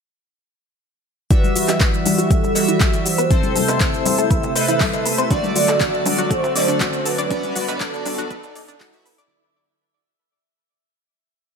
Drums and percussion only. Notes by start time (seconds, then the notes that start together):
1.31 kick, closed hi-hat, shaker
1.44 high conga, shaker
1.56 open hi-hat, shaker
1.68 clap, closed hi-hat, cowbell, shaker
1.80 kick, clap, closed hi-hat, shaker
1.94 shaker
2.06 open hi-hat, high conga, shaker
2.18 closed hi-hat, shaker
2.31 kick, closed hi-hat, shaker
2.44 shaker
2.55 open hi-hat, cowbell, shaker
2.68 closed hi-hat, shaker
2.80 kick, clap, closed hi-hat, shaker
2.93 closed hi-hat, shaker
3.06 open hi-hat, shaker
3.18 closed hi-hat, shaker
3.31 kick, closed hi-hat, shaker
3.43 closed hi-hat, high conga, shaker
3.56 open hi-hat, high conga, shaker
3.68 closed hi-hat, cowbell, shaker
3.80 kick, clap, closed hi-hat, shaker
3.94 shaker
4.06 open hi-hat, high conga, shaker
4.18 closed hi-hat, shaker
4.31 kick, closed hi-hat, shaker
4.43 closed hi-hat, shaker
4.56 open hi-hat, cowbell, shaker
4.68 closed hi-hat, shaker
4.80 kick, clap, open hi-hat, high conga, shaker
4.93 closed hi-hat, cowbell, shaker
5.06 open hi-hat, shaker
5.18 closed hi-hat, shaker
5.31 kick, closed hi-hat, shaker
5.44 high conga, shaker
5.56 open hi-hat, shaker
5.68 clap, closed hi-hat, cowbell, shaker
5.80 kick, clap, closed hi-hat, shaker
5.94 shaker
6.06 open hi-hat, high conga, shaker
6.18 closed hi-hat, shaker
6.31 kick, closed hi-hat, shaker
6.44 shaker
6.56 open hi-hat, cowbell, shaker
6.68 closed hi-hat, shaker
6.80 kick, clap, closed hi-hat, shaker
6.93 closed hi-hat, shaker
7.06 open hi-hat, shaker
7.18 closed hi-hat, shaker
7.31 kick, closed hi-hat, shaker
7.43 closed hi-hat, high conga, shaker
7.56 open hi-hat, high conga, shaker
7.68 closed hi-hat, cowbell, shaker
7.80 kick, clap, closed hi-hat, shaker
7.94 shaker
8.05 open hi-hat, high conga, shaker
8.18 closed hi-hat, shaker
8.31 kick, closed hi-hat, shaker
8.43 closed hi-hat, shaker
8.55 open hi-hat, cowbell, shaker
8.68 closed hi-hat, shaker
8.80 kick, clap, open hi-hat, high conga, shaker
8.93 closed hi-hat, cowbell, shaker
9.06 open hi-hat, shaker
9.18 closed hi-hat, shaker